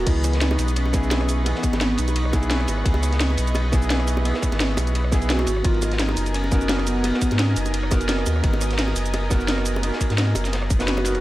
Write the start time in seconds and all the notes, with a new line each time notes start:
0.05 C#2 E3 B3 E4 G#4 B4 D#5 C#6, kick, closed hi-hat, crash, ride
0.16 ride
0.24 cross-stick, closed hi-hat, ride, high bongo, shaker
0.33 snare, closed hi-hat
0.41 D#4, snare, closed hi-hat, ride
0.51 high bongo
0.58 B1, open hi-hat, ride, shaker
0.68 closed hi-hat, shaker
0.76 C#4, cross-stick, closed hi-hat, ride
0.86 high bongo
0.93 B3 D#4 E4 G#4, kick, snare, closed hi-hat, ride, shaker
1.03 shaker
1.11 snare, closed hi-hat, ride, high bongo
1.21 cross-stick, ride
1.28 open hi-hat, ride, shaker
1.44 E3 B3 D#4 G#4, closed hi-hat, ride, high bongo
1.55 snare
1.63 kick, cross-stick, closed hi-hat, ride, shaker
1.73 G#1, snare, closed hi-hat, high bongo
1.81 B3, snare, closed hi-hat, ride
1.98 B1 D#4, open hi-hat, ride, shaker
2.08 closed hi-hat, high bongo, shaker
2.16 closed hi-hat, ride
2.25 cross-stick
2.33 B3 D#4 E4 G#4, kick, snare, closed hi-hat, ride, high bongo, shaker
2.43 closed hi-hat, shaker
2.50 snare, closed hi-hat, ride
2.60 cross-stick, ride
2.68 G#1, open hi-hat, ride, high bongo, shaker
2.78 cross-stick
2.84 C#2 B3 D#4 E4 G#4, kick, closed hi-hat, ride
2.94 ride, high bongo
3.03 cross-stick, closed hi-hat, ride, shaker
3.12 snare, closed hi-hat
3.20 snare, closed hi-hat, ride
3.30 high bongo
3.37 B1, open hi-hat, ride, shaker
3.47 closed hi-hat, shaker
3.55 cross-stick, closed hi-hat, ride, high bongo
3.72 B3 D#4 E4 G#4, kick, snare, closed hi-hat, ride, shaker
3.82 shaker
3.90 snare, closed hi-hat, ride, high bongo
4.00 cross-stick, ride
4.07 open hi-hat, ride, shaker
4.17 high bongo
4.23 B3 D#4 E4 G#4, closed hi-hat, ride
4.34 snare
4.43 kick, cross-stick, closed hi-hat, ride, shaker
4.52 G#1, snare, closed hi-hat, high bongo
4.60 snare, closed hi-hat, ride
4.77 B1, open hi-hat, ride, high bongo, shaker
4.87 closed hi-hat, shaker
4.95 closed hi-hat, ride
5.05 cross-stick
5.12 B3 D#4 E4 G#4, kick, snare, closed hi-hat, ride, high bongo, shaker
5.22 closed hi-hat, shaker
5.30 F#4, snare, closed hi-hat, ride
5.39 cross-stick, ride, high bongo
5.47 G#1 A#4 D#5 G#5, open hi-hat, ride, shaker
5.57 cross-stick
5.63 G#1 F#3 B3 D#4 F4 A#4, kick, closed hi-hat, ride
5.74 ride
5.82 cross-stick, closed hi-hat, ride, high bongo, shaker
5.92 snare, closed hi-hat
5.99 D#4, snare, closed hi-hat, ride
6.09 high bongo
6.17 F#1, open hi-hat, ride, shaker
6.26 closed hi-hat, shaker
6.34 C#4, cross-stick, closed hi-hat, ride
6.44 high bongo
6.51 B3 D#4 F#4 A#4, kick, snare, closed hi-hat, ride, shaker
6.61 shaker
6.69 snare, closed hi-hat, ride, high bongo
6.79 cross-stick, ride
6.87 B3, open hi-hat, ride, shaker
7.03 B3 D#4 F#4 A#4, closed hi-hat, ride, high bongo
7.14 snare
7.22 kick, cross-stick, closed hi-hat, ride, shaker
7.31 G#2, snare, closed hi-hat, high bongo
7.39 C#4, snare, closed hi-hat, ride
7.56 F#1 D#4, open hi-hat, ride, shaker
7.66 closed hi-hat, high bongo, shaker
7.74 closed hi-hat, ride
7.83 cross-stick
7.91 B3 D#4 F#4 A#4, kick, snare, closed hi-hat, ride, high bongo, shaker
8.01 closed hi-hat, shaker
8.09 snare, closed hi-hat, ride
8.18 cross-stick, ride
8.26 D#2, open hi-hat, ride, high bongo, shaker
8.36 cross-stick
8.42 G#1 B3 D#4 F#4 A#4, kick, closed hi-hat, ride
8.53 ride, high bongo
8.61 cross-stick, closed hi-hat, ride, shaker
8.71 snare, closed hi-hat
8.78 snare, closed hi-hat, ride
8.88 high bongo
8.96 F#1, open hi-hat, ride, shaker
9.06 closed hi-hat, shaker
9.14 cross-stick, closed hi-hat, ride, high bongo
9.30 B3 D#4 F#4 A#4, kick, snare, closed hi-hat, ride, shaker
9.40 shaker
9.48 snare, closed hi-hat, ride, high bongo
9.58 cross-stick, ride
9.65 open hi-hat, ride, shaker
9.76 high bongo
9.82 B3 D#4 F#4 A#4, closed hi-hat, ride
9.93 snare
10.01 kick, cross-stick, closed hi-hat, ride, shaker
10.10 G#2, snare, closed hi-hat, high bongo
10.18 snare, closed hi-hat, ride
10.35 F#1, open hi-hat, ride, high bongo, shaker
10.45 snare, closed hi-hat, shaker
10.53 snare, closed hi-hat, ride
10.62 cross-stick
10.70 kick, closed hi-hat, ride, high bongo, shaker
10.79 B3 D#4 F#4 B4, snare, closed hi-hat, ride, shaker
10.88 F#4, snare, closed hi-hat
10.97 cross-stick, ride, high bongo
11.04 B3 D#4 F#4 A#4, snare, open hi-hat, ride, shaker
11.15 D#1, cross-stick, closed hi-hat